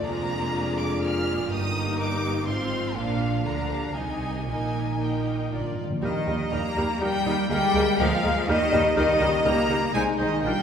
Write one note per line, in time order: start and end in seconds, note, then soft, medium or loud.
0.03 1.47 F1 medium
0.03 1.47 F2 medium
0.03 1.32 G#3 medium
0.03 0.99 A#3 medium
0.03 1.32 D4 medium
0.03 0.99 F4 medium
0.03 1.00 G#4 medium
0.03 1.00 D5 medium
0.03 0.77 A#5 medium
0.77 1.01 D6 medium
1.01 1.49 A#3 medium
1.01 1.49 F4 medium
1.01 1.50 G#4 medium
1.01 1.50 D5 medium
1.01 1.50 F6 medium
1.49 2.46 G1 medium
1.49 2.46 G2 medium
1.49 2.43 G3 medium
1.49 2.46 A#3 medium
1.49 2.43 D#4 medium
1.49 2.48 D#4 medium
1.49 2.48 G4 medium
1.49 2.48 A#4 medium
1.49 1.98 D#6 medium
2.00 2.47 D6 medium
2.46 2.97 G#1 medium
2.46 2.97 G#2 medium
2.46 3.92 F3 medium
2.46 2.96 C4 medium
2.46 2.97 F4 medium
2.46 2.93 F4 medium
2.46 2.96 F4 medium
2.46 2.96 F5 medium
2.46 2.95 C6 medium
2.95 3.46 A#1 medium
2.95 3.46 A#2 medium
2.95 3.43 A#3 medium
2.95 3.43 D4 medium
2.95 3.92 D4 medium
2.95 3.45 F4 soft
2.95 3.46 F5 medium
2.95 3.46 F5 soft
3.45 3.95 D2 medium
3.45 3.95 D3 soft
3.45 3.94 A#3 soft
3.45 3.94 D4 medium
3.45 3.55 F4 soft
3.45 3.95 F5 soft
3.45 3.96 A#5 medium
3.72 3.80 G4 soft
3.95 4.46 C2 soft
3.95 4.47 C3 soft
3.95 5.48 D#3 medium
3.95 4.47 D#4 soft
3.95 5.47 D#4 medium
3.95 4.47 G#4 soft
3.95 4.48 D#5 soft
3.95 4.46 G#5 medium
4.47 5.50 A#1 soft
4.47 5.50 A#2 soft
4.47 4.98 A#3 soft
4.47 4.99 D#4 soft
4.47 5.00 A#4 soft
4.47 4.99 D#5 soft
4.47 4.98 G#5 medium
5.00 5.50 A#3 soft
5.00 5.50 D#4 soft
5.00 5.50 A#4 soft
5.00 5.51 D#5 soft
5.00 5.52 G5 medium
5.51 5.59 A#1 soft
5.51 5.58 A#2 soft
5.51 5.59 A#2 soft
5.51 5.76 F3 soft
5.51 5.60 A#3 soft
5.51 5.76 D4 soft
5.51 5.82 F4 soft
5.51 5.81 A#4 soft
5.51 5.81 D5 soft
5.59 5.66 A#2 soft
5.68 5.74 A#2 soft
5.75 5.81 A#2 soft
5.82 5.89 A#2 medium
5.90 5.97 A#2 medium
6.01 6.09 D#2 medium
6.01 6.49 D#3 medium
6.01 7.46 G3 medium
6.01 6.13 G3 soft
6.01 8.93 A#3 medium
6.01 6.14 A#3 medium
6.01 6.10 D#4 medium
6.01 6.10 G4 medium
6.01 6.10 A#4 medium
6.01 6.15 A#4 medium
6.01 6.49 D#5 medium
6.26 6.35 D#2 medium
6.26 6.38 G3 soft
6.26 6.39 A#3 soft
6.26 6.35 D#4 soft
6.26 6.35 G4 soft
6.26 6.34 A#4 medium
6.26 6.40 A#4 soft
6.51 6.60 D#2 medium
6.51 6.62 G3 medium
6.51 6.63 A#3 soft
6.51 7.02 A#3 medium
6.51 6.60 D#4 medium
6.51 6.59 G4 medium
6.51 6.60 A#4 medium
6.51 6.64 A#4 medium
6.51 7.01 A#5 medium
6.75 6.84 D#2 medium
6.75 6.88 G3 medium
6.75 6.88 A#3 medium
6.75 6.83 D#4 medium
6.75 6.83 G4 medium
6.75 6.84 A#4 medium
6.75 6.88 A#4 medium
7.01 7.09 D#2 medium
7.01 7.49 G3 medium
7.01 7.12 G3 medium
7.01 7.13 A#3 medium
7.01 7.09 D#4 medium
7.01 7.09 G4 medium
7.01 7.09 A#4 medium
7.01 7.15 A#4 medium
7.01 7.49 G5 medium
7.01 7.51 G5 medium
7.25 7.33 D#2 medium
7.25 7.37 G3 medium
7.25 7.37 A#3 medium
7.25 7.33 D#4 medium
7.25 7.33 G4 medium
7.25 7.34 A#4 medium
7.29 7.40 A#4 medium
7.49 7.58 D2 medium
7.49 7.98 G3 loud
7.49 7.61 G#3 medium
7.49 8.47 G#3 medium
7.49 7.57 A#3 medium
7.49 7.61 A#3 medium
7.49 7.58 G#4 medium
7.49 7.59 A#4 medium
7.49 7.98 G5 loud
7.49 8.00 G5 medium
7.53 7.64 A#4 medium
7.74 7.82 D2 medium
7.74 7.86 G#3 medium
7.74 7.83 A#3 medium
7.74 7.86 A#3 medium
7.74 7.83 G#4 medium
7.74 7.83 A#4 medium
7.74 7.87 A#4 medium
7.99 8.07 D2 medium
7.99 8.48 F3 medium
7.99 8.11 G#3 medium
7.99 8.11 A#3 medium
7.99 8.08 A#3 medium
7.99 8.08 G#4 medium
7.99 8.07 A#4 medium
7.99 8.11 A#4 medium
7.99 8.48 F5 medium
8.23 8.32 D2 medium
8.23 8.35 G#3 medium
8.23 8.35 A#3 medium
8.23 8.32 A#3 medium
8.23 8.32 G#4 medium
8.23 8.31 A#4 medium
8.23 8.36 A#4 medium
8.47 8.56 D#2 medium
8.47 8.95 D#3 medium
8.47 9.94 G3 medium
8.47 8.60 G3 medium
8.47 8.57 A#3 medium
8.47 8.59 D#4 medium
8.47 8.57 G4 medium
8.47 8.55 A#4 medium
8.47 8.60 A#4 medium
8.47 8.95 D#5 loud
8.47 8.95 D#5 medium
8.72 8.80 D#2 medium
8.72 8.83 G3 medium
8.72 8.81 A#3 medium
8.72 8.83 D#4 medium
8.72 8.81 G4 medium
8.72 8.80 A#4 medium
8.72 8.84 A#4 medium
8.96 9.04 C#2 medium
8.96 9.44 D#3 medium
8.96 9.08 G3 medium
8.96 9.04 A#3 medium
8.96 9.92 A#3 medium
8.96 9.07 D#4 medium
8.96 9.05 G4 medium
8.96 9.04 A#4 medium
8.96 9.08 A#4 medium
8.96 9.44 D#5 loud
8.96 9.44 D#5 medium
9.19 9.27 C#2 medium
9.19 9.32 G3 medium
9.19 9.28 A#3 medium
9.19 9.32 D#4 medium
9.19 9.29 G4 medium
9.19 9.28 A#4 medium
9.19 9.33 A#4 medium
9.44 9.52 C#2 medium
9.44 9.56 G3 medium
9.44 9.53 A#3 medium
9.44 9.94 A#3 medium
9.44 9.57 D#4 medium
9.44 9.52 G4 medium
9.44 9.53 A#4 medium
9.44 9.56 A#4 medium
9.44 9.94 A#5 medium
9.68 9.76 C#2 medium
9.68 9.81 G3 medium
9.68 9.76 A#3 medium
9.68 9.81 D#4 medium
9.68 9.77 G4 medium
9.68 9.76 A#4 medium
9.68 9.81 A#4 medium
9.93 10.01 C2 medium
9.93 10.02 G#3 medium
9.93 10.44 G#3 medium
9.93 10.06 G#3 medium
9.93 10.03 C4 medium
9.93 10.43 D#4 medium
9.93 10.03 D#4 medium
9.93 10.07 D#4 medium
9.93 10.02 G#4 medium
9.93 10.06 C5 medium
9.93 10.02 G#5 medium
9.93 10.19 G#5 medium
10.19 10.27 C2 medium
10.19 10.44 D#3 medium
10.19 10.31 G#3 medium
10.19 10.28 C4 medium
10.19 10.28 D#4 medium
10.19 10.31 D#4 medium
10.19 10.27 G#4 medium
10.19 10.30 C5 soft
10.19 10.44 D#5 medium
10.19 10.26 D#5 medium
10.43 10.51 A#1 medium
10.43 10.62 G3 medium
10.43 10.56 A#3 soft
10.43 10.62 A#3 medium
10.43 10.62 D4 soft
10.43 10.53 D4 soft
10.43 10.57 D4 medium
10.43 10.53 F4 medium
10.43 10.51 A#4 medium
10.43 10.57 A#4 medium
10.43 10.62 G5 medium